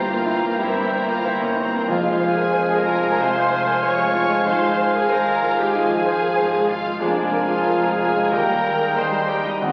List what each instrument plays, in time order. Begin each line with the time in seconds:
Already playing: double bass section G1, cello section G2, grand piano G2 A#3 A#4 C5, bassoon E3, viola section F4, clarinet C5, violin section F5 A#5, cor anglais G5, flute A#5
0.09 grand piano A#3
0.25 grand piano E4, violin section A#5
0.43 grand piano A#3
0.58 double bass section G1, cello section G2, grand piano G3, french horn section A#3 C4, viola section E4, violin section E5
0.77 grand piano A#3
0.91 grand piano C5, violin section A#5
1.08 viola section F4, grand piano A#4, violin section F5
1.24 double bass section G1, cello section G2, viola section E4, grand piano C5, violin section E5
1.41 grand piano A#3, viola section C#4, violin section C#5
1.56 viola section C4, grand piano E4, violin section A#5
1.60 violin section C5
1.73 grand piano A#3
1.88 double bass section F1, grand piano F2, cello section F2, timpani F2, bassoon F3, french horn section G#3 F4, viola section F4, clarinet F5, cor anglais G#5, flute G#5
1.93 violin section F5
2.03 grand piano G#3
2.20 grand piano C5, violin section G#5
2.33 viola section G#4, grand piano A#4, violin section G#5
2.53 double bass section F1, cello section F2, grand piano C5
2.69 grand piano G#3
2.77 viola section A#4, violin section A#5
2.86 grand piano F4, violin section G#5
3.02 grand piano G#3
3.18 double bass section F1, cello section F2, grand piano C3, french horn section G#3 F4, viola section C5
3.23 violin section C6
3.35 grand piano G#3
3.50 grand piano C5, violin section G#5
3.66 grand piano A#4
3.82 double bass section F1, cello section F2, grand piano C5, viola section C#5, violin section C#6
3.97 grand piano G#3
4.13 grand piano F4, violin section G#5
4.29 grand piano G#3
4.45 double bass section G#1, grand piano G#2, cello section G#2, french horn section G#3 F4, viola section C5, violin section F5 C6
4.61 grand piano G#3
4.77 grand piano C5, violin section F5
4.93 viola section G#4, grand piano A#4, violin section G#5
5.09 double bass section G#1, cello section G#2, viola section A#4, grand piano C5, violin section A#5
5.25 grand piano G#3
5.42 grand piano F4, violin section F5
5.59 grand piano G#3, viola section G4, violin section G5
5.73 double bass section G#1, grand piano G#2, cello section G#2, french horn section G#3 F4, viola section G#4, violin section G#5
5.89 grand piano F3
6.06 grand piano C5, violin section F5
6.21 grand piano A#4
6.36 double bass section G#1, cello section G#2, grand piano C5
6.52 grand piano G#3
6.68 grand piano F4, viola section F4, violin section F5
6.86 grand piano G#3
7.00 double bass section F1, grand piano F2, cello section F2, bassoon F3, french horn section A#3 G#4, viola section D4, violin section D5, clarinet F5, cor anglais G#5, flute A#5
7.18 grand piano G#3
7.33 grand piano A#4, violin section G#5
7.45 viola section F4, violin section F5
7.50 grand piano G#4
7.66 double bass section F1, cello section F2, grand piano A#4
7.83 grand piano G#3
7.89 viola section G#4, violin section G#5
7.98 grand piano F4, violin section G#5
8.16 grand piano G#3
8.31 grand piano D#2, cello section D#2, double bass section D#2, bassoon G3, french horn section A#3 G4, viola section A#4, violin section G5 A#5, cor anglais G5
8.48 grand piano G3
8.63 grand piano A#4, violin section G5
8.79 grand piano G#4
8.95 double bass section D#2, cello section D#2, grand piano A#4, viola section C5, clarinet D#5, violin section C6
9.11 grand piano G3
9.28 grand piano G4, viola section G4, violin section G5
9.45 grand piano G3, viola section D#4, violin section D#5
9.60 cello section D#2, grand piano D#2, double bass section D#2, bassoon G#3, french horn section G#3 F#4, viola section C4, violin section C5, cor anglais F#5, flute G#5